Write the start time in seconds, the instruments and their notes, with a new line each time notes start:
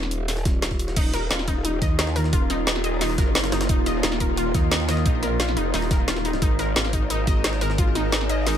Already playing: wobble bass D#1
0.03 snare
0.11 closed hi-hat
0.28 snare, closed hi-hat, open hi-hat
0.37 snare
0.45 kick, snare, closed hi-hat
0.62 snare, closed hi-hat
0.71 kick, snare
0.79 closed hi-hat, open hi-hat
0.88 snare
0.96 wobble bass D#1, synth drone D#3 A#3 F4, synth arpeggio sound D#4, kick, closed hi-hat, crash
1.14 synth arpeggio sound A#4, snare, closed hi-hat
1.31 wobble bass D#1, synth arpeggio sound F4, snare, closed hi-hat
1.39 snare
1.48 synth arpeggio sound D#4, kick, closed hi-hat
1.65 synth arpeggio sound D#4, closed hi-hat
1.82 wobble bass D#2, synth arpeggio sound D#5, kick, snare, closed hi-hat
1.99 synth arpeggio sound D#4, snare, closed hi-hat
2.07 snare
2.16 synth arpeggio sound A#4, snare, closed hi-hat, open hi-hat
2.24 snare
2.33 wobble bass D#1, synth arpeggio sound F4, kick, closed hi-hat
2.50 synth arpeggio sound D#4, snare, closed hi-hat
2.67 synth arpeggio sound D#4, snare, closed hi-hat
2.75 snare
2.84 synth arpeggio sound D#5, closed hi-hat
3.01 synth arpeggio sound D#4, snare, closed hi-hat, open hi-hat
3.10 snare
3.18 wobble bass F#1, synth arpeggio sound A#4, kick, snare, closed hi-hat
3.35 synth arpeggio sound F4, snare, closed hi-hat
3.39 snare, closed hi-hat
3.44 snare, closed hi-hat
3.52 wobble bass F#1, synth arpeggio sound D#4, snare, closed hi-hat, open hi-hat
3.61 snare, closed hi-hat
3.69 wobble bass D#1, synth arpeggio sound D#4, kick, closed hi-hat
3.86 synth arpeggio sound D#5, snare, closed hi-hat
4.03 wobble bass D#1, synth arpeggio sound D#4, snare, closed hi-hat
4.12 snare
4.20 synth arpeggio sound A#4, kick, closed hi-hat
4.37 synth arpeggio sound F4, closed hi-hat
4.54 wobble bass D#2, synth arpeggio sound D#4, kick, snare, closed hi-hat
4.71 synth arpeggio sound D#4, snare, closed hi-hat
4.80 snare
4.89 synth arpeggio sound D#5, snare, closed hi-hat, open hi-hat
4.97 snare
5.06 wobble bass A#1, synth arpeggio sound D#4, kick, closed hi-hat
5.23 synth arpeggio sound A#4, snare, closed hi-hat
5.40 synth arpeggio sound F4, snare, closed hi-hat
5.48 snare
5.57 wobble bass F1, synth arpeggio sound D#4, closed hi-hat
5.74 wobble bass D#1, synth arpeggio sound D#4, snare, closed hi-hat, open hi-hat
5.82 snare
5.91 synth arpeggio sound A#4, kick, snare, closed hi-hat
6.08 wobble bass D#1, synth arpeggio sound F4, snare, closed hi-hat
6.16 snare
6.25 synth arpeggio sound D#4, closed hi-hat, open hi-hat
6.33 snare
6.42 wobble bass G#1, synth drone G#3 D#4 A#4, synth arpeggio sound D#4, kick, closed hi-hat
6.59 synth arpeggio sound A#4, snare, closed hi-hat
6.76 wobble bass G#1, synth arpeggio sound F4, snare, closed hi-hat
6.85 snare
6.93 synth arpeggio sound D#4, kick, closed hi-hat
7.10 synth arpeggio sound D#4, closed hi-hat
7.27 wobble bass G#1, synth arpeggio sound D#5, kick, snare, closed hi-hat
7.44 synth arpeggio sound D#4, snare, closed hi-hat
7.53 snare
7.61 synth arpeggio sound A#4, snare, closed hi-hat, open hi-hat
7.70 snare
7.78 wobble bass G#1, synth arpeggio sound F4, kick, closed hi-hat
7.95 synth arpeggio sound D#4, snare, closed hi-hat
8.12 synth arpeggio sound D#4, snare, closed hi-hat
8.21 snare
8.29 synth arpeggio sound D#5, closed hi-hat
8.46 synth arpeggio sound D#4, snare, closed hi-hat, open hi-hat